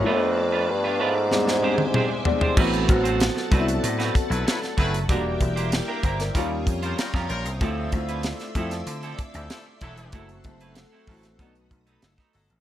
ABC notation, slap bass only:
X:1
M:4/4
L:1/16
Q:1/4=95
K:Ador
V:1 name="Slap bass" clef=bass
z16 | A,,,2 A,,,3 z C,,2 A,,2 z B,,, z2 F,,,2 | E,,,2 E,,,3 z G,,,2 ^D,,2 ^E,,2 z E,, ^A,,, C,, | D,,2 D,,3 z =F,,2 D,2 z D,, z2 E,,,2 |
F,,,2 F,,,3 z A,,,2 B,,,2 B,,,2 F,,, z G,,, A,,, |]